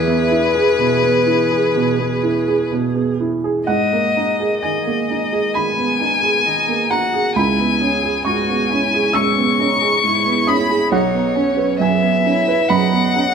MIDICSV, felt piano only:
0, 0, Header, 1, 2, 480
1, 0, Start_track
1, 0, Tempo, 960000
1, 1834, Time_signature, 4, 2, 24, 8
1, 2310, Tempo, 923077
1, 2790, Tempo, 903614
1, 4230, Tempo, 888889
1, 6978, End_track
2, 0, Start_track
2, 0, Title_t, "Felt piano"
2, 0, Program_c, 0, 0
2, 0, Note_on_c, 0, 40, 65
2, 0, Note_on_c, 0, 76, 75
2, 11, Control_c, 0, 64, 127
2, 35, Note_on_c, 0, 59, 49
2, 153, Note_on_c, 0, 64, 52
2, 223, Note_off_c, 0, 59, 0
2, 271, Note_on_c, 0, 68, 48
2, 342, Note_off_c, 0, 64, 0
2, 393, Note_on_c, 0, 47, 45
2, 461, Note_off_c, 0, 68, 0
2, 514, Note_on_c, 0, 59, 46
2, 581, Note_off_c, 0, 47, 0
2, 631, Note_on_c, 0, 64, 42
2, 701, Note_off_c, 0, 59, 0
2, 754, Note_on_c, 0, 68, 45
2, 819, Note_off_c, 0, 64, 0
2, 847, Note_off_c, 0, 40, 0
2, 875, Note_on_c, 0, 47, 46
2, 940, Note_off_c, 0, 68, 0
2, 995, Note_on_c, 0, 59, 42
2, 1062, Note_off_c, 0, 47, 0
2, 1116, Note_on_c, 0, 64, 45
2, 1183, Note_off_c, 0, 59, 0
2, 1239, Note_on_c, 0, 68, 44
2, 1304, Note_off_c, 0, 64, 0
2, 1328, Note_off_c, 0, 76, 0
2, 1359, Note_on_c, 0, 47, 42
2, 1426, Note_off_c, 0, 68, 0
2, 1478, Note_on_c, 0, 59, 42
2, 1548, Note_off_c, 0, 47, 0
2, 1602, Note_on_c, 0, 64, 43
2, 1668, Note_off_c, 0, 59, 0
2, 1721, Note_on_c, 0, 68, 44
2, 1791, Note_off_c, 0, 64, 0
2, 1835, Note_on_c, 0, 78, 76
2, 1838, Note_off_c, 0, 68, 0
2, 1839, Note_on_c, 0, 44, 59
2, 1844, Control_c, 0, 64, 0
2, 1916, Control_c, 0, 64, 127
2, 1962, Note_on_c, 0, 58, 42
2, 2083, Note_on_c, 0, 63, 48
2, 2150, Note_off_c, 0, 58, 0
2, 2200, Note_on_c, 0, 68, 43
2, 2269, Note_off_c, 0, 63, 0
2, 2292, Note_off_c, 0, 78, 0
2, 2313, Note_on_c, 0, 80, 55
2, 2319, Note_on_c, 0, 51, 46
2, 2387, Note_off_c, 0, 68, 0
2, 2438, Note_on_c, 0, 58, 41
2, 2509, Note_off_c, 0, 51, 0
2, 2561, Note_on_c, 0, 63, 39
2, 2627, Note_off_c, 0, 58, 0
2, 2677, Note_on_c, 0, 68, 44
2, 2748, Note_off_c, 0, 63, 0
2, 2772, Note_off_c, 0, 80, 0
2, 2773, Note_off_c, 0, 44, 0
2, 2793, Note_on_c, 0, 83, 75
2, 2796, Note_on_c, 0, 51, 45
2, 2867, Note_off_c, 0, 68, 0
2, 2915, Note_on_c, 0, 59, 41
2, 2987, Note_off_c, 0, 51, 0
2, 3033, Note_on_c, 0, 63, 44
2, 3106, Note_off_c, 0, 59, 0
2, 3154, Note_on_c, 0, 68, 42
2, 3225, Note_off_c, 0, 63, 0
2, 3274, Note_on_c, 0, 51, 42
2, 3346, Note_off_c, 0, 68, 0
2, 3394, Note_on_c, 0, 58, 40
2, 3467, Note_off_c, 0, 51, 0
2, 3494, Note_off_c, 0, 83, 0
2, 3514, Note_on_c, 0, 82, 67
2, 3516, Note_on_c, 0, 63, 41
2, 3587, Note_off_c, 0, 58, 0
2, 3634, Note_on_c, 0, 68, 47
2, 3709, Note_off_c, 0, 63, 0
2, 3739, Note_off_c, 0, 82, 0
2, 3755, Note_off_c, 0, 68, 0
2, 3755, Note_on_c, 0, 37, 54
2, 3755, Note_on_c, 0, 83, 69
2, 3765, Control_c, 0, 64, 0
2, 3846, Control_c, 0, 64, 127
2, 3878, Note_on_c, 0, 59, 39
2, 3993, Note_on_c, 0, 61, 44
2, 4067, Note_off_c, 0, 59, 0
2, 4112, Note_on_c, 0, 68, 40
2, 4184, Note_off_c, 0, 61, 0
2, 4211, Note_off_c, 0, 83, 0
2, 4226, Note_on_c, 0, 85, 69
2, 4233, Note_on_c, 0, 44, 40
2, 4304, Note_off_c, 0, 68, 0
2, 4357, Note_on_c, 0, 59, 40
2, 4425, Note_off_c, 0, 44, 0
2, 4480, Note_on_c, 0, 61, 42
2, 4547, Note_off_c, 0, 59, 0
2, 4599, Note_on_c, 0, 68, 45
2, 4668, Note_off_c, 0, 61, 0
2, 4688, Note_off_c, 0, 85, 0
2, 4690, Note_off_c, 0, 37, 0
2, 4705, Note_on_c, 0, 88, 84
2, 4716, Note_on_c, 0, 44, 38
2, 4788, Note_off_c, 0, 68, 0
2, 4836, Note_on_c, 0, 59, 40
2, 4906, Note_off_c, 0, 44, 0
2, 4954, Note_on_c, 0, 61, 41
2, 5026, Note_off_c, 0, 59, 0
2, 5073, Note_on_c, 0, 68, 39
2, 5145, Note_off_c, 0, 61, 0
2, 5192, Note_on_c, 0, 44, 44
2, 5264, Note_off_c, 0, 68, 0
2, 5314, Note_on_c, 0, 59, 44
2, 5383, Note_off_c, 0, 44, 0
2, 5405, Note_off_c, 0, 88, 0
2, 5428, Note_on_c, 0, 87, 81
2, 5430, Note_on_c, 0, 61, 42
2, 5502, Note_off_c, 0, 59, 0
2, 5548, Note_on_c, 0, 68, 47
2, 5619, Note_off_c, 0, 61, 0
2, 5649, Note_off_c, 0, 87, 0
2, 5667, Note_off_c, 0, 68, 0
2, 5669, Note_on_c, 0, 35, 61
2, 5671, Note_on_c, 0, 78, 74
2, 5677, Control_c, 0, 64, 0
2, 5775, Control_c, 0, 64, 127
2, 5790, Note_on_c, 0, 59, 45
2, 5905, Note_on_c, 0, 61, 50
2, 5979, Note_off_c, 0, 59, 0
2, 6020, Note_on_c, 0, 71, 46
2, 6096, Note_off_c, 0, 61, 0
2, 6124, Note_off_c, 0, 78, 0
2, 6146, Note_on_c, 0, 42, 45
2, 6152, Note_on_c, 0, 80, 72
2, 6214, Note_off_c, 0, 71, 0
2, 6270, Note_on_c, 0, 59, 40
2, 6337, Note_off_c, 0, 42, 0
2, 6392, Note_on_c, 0, 61, 46
2, 6460, Note_off_c, 0, 59, 0
2, 6511, Note_on_c, 0, 71, 52
2, 6581, Note_off_c, 0, 61, 0
2, 6606, Note_off_c, 0, 35, 0
2, 6609, Note_off_c, 0, 80, 0
2, 6629, Note_on_c, 0, 83, 85
2, 6631, Note_on_c, 0, 42, 49
2, 6703, Note_off_c, 0, 71, 0
2, 6747, Note_on_c, 0, 59, 43
2, 6824, Note_off_c, 0, 42, 0
2, 6877, Note_on_c, 0, 61, 49
2, 6943, Note_off_c, 0, 59, 0
2, 6978, Note_off_c, 0, 61, 0
2, 6978, Note_off_c, 0, 83, 0
2, 6978, End_track
0, 0, End_of_file